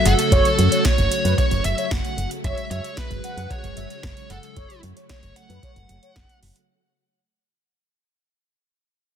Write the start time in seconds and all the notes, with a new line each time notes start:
Already playing: C#3 F#3 A3 F#4
0.05 F#1 A4 F#5, closed hi-hat
0.19 closed hi-hat
0.32 F#1 C#5, kick, closed hi-hat
0.45 closed hi-hat
0.59 F#2, closed hi-hat
0.72 C#5, closed hi-hat
0.85 C#5, kick, snare, closed hi-hat
0.98 F#1, closed hi-hat
1.12 closed hi-hat
1.25 F#2 B4, closed hi-hat
1.38 C#5, kick, closed hi-hat
1.51 F#1, closed hi-hat
1.64 F#1 E5, closed hi-hat
1.78 C#5, closed hi-hat
1.91 F#1 F#5, kick, snare, closed hi-hat
2.05 closed hi-hat
2.18 F#1, closed hi-hat
2.31 closed hi-hat
2.44 F#1 C#3 F#3 G#3 C#5 E5, kick, closed hi-hat
2.58 closed hi-hat
2.71 F#2 C#5 E5, closed hi-hat
2.84 closed hi-hat
2.97 B4, kick, snare, closed hi-hat
3.11 F#1, closed hi-hat
3.24 F#5, closed hi-hat
3.37 F#2, closed hi-hat
3.50 C#5, kick, closed hi-hat
3.64 F#1, closed hi-hat
3.77 F#1 E5, closed hi-hat
3.90 closed hi-hat
4.03 F#1 C#5, kick, snare, closed hi-hat
4.17 closed hi-hat
4.30 F#1 A4 F#5, closed hi-hat
4.43 closed hi-hat
4.56 F#1 F#3 A3 C#5, kick, closed hi-hat
4.70 closed hi-hat
4.83 F#2, closed hi-hat
4.97 C#5, closed hi-hat
5.09 C#5, kick, snare, closed hi-hat
5.23 F#1, closed hi-hat
5.36 F#5, closed hi-hat
5.49 F#2 B4, closed hi-hat
5.63 C#5, kick, closed hi-hat
5.76 F#1, closed hi-hat
5.89 F#1, closed hi-hat
6.03 C#5, closed hi-hat
6.16 F#1, kick, snare, closed hi-hat
6.29 closed hi-hat
6.43 F#1, open hi-hat
6.56 closed hi-hat